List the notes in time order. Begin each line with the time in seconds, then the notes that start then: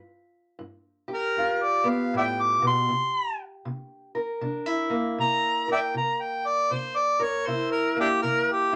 Already playing: G2
0.59 G2
1.08 G4
1.14 A#4
1.37 G2 F4
1.63 D5
1.84 B3
1.90 F5
2.13 A2 D5 E5 G5
2.43 D6
2.62 B2
2.67 C6
2.89 C3
3.65 C3
4.15 A#4
4.41 C3 D4
4.66 E4
4.90 A#3
5.18 C3 A#5
5.68 A#4
5.72 D5 E5 G5
5.94 C3 A#5
6.22 G5
6.47 D5
6.71 C3 C5
6.97 D5
7.20 A#4 C#5
7.46 C3 E4 C5
7.72 A#4
7.96 A#3 D4 E4 G4
8.22 C3 A#4
8.52 G4
8.73 E4